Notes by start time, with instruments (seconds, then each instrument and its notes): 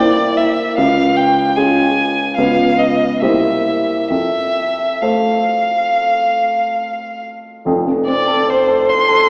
Already playing: grand piano C2, violin D5
0.00 grand piano A#3 E4 C5
0.37 violin E5
0.77 grand piano C#2, violin F5
1.16 violin G5
1.56 grand piano C#4 F4 G#4, violin G#5
2.37 grand piano C#2 B3 F4 B4, violin F5
2.79 violin D#5
3.22 grand piano C2 A#3 G4 C5, violin E5
4.10 grand piano F2, violin E5
5.02 grand piano A3 A4 C5, violin F5
7.65 grand piano F1 F2
7.86 grand piano C3
8.07 grand piano C4, violin D5
8.27 grand piano A4
8.48 grand piano C5, violin C5
8.68 grand piano A4
8.88 grand piano C5, violin C6
9.09 grand piano A4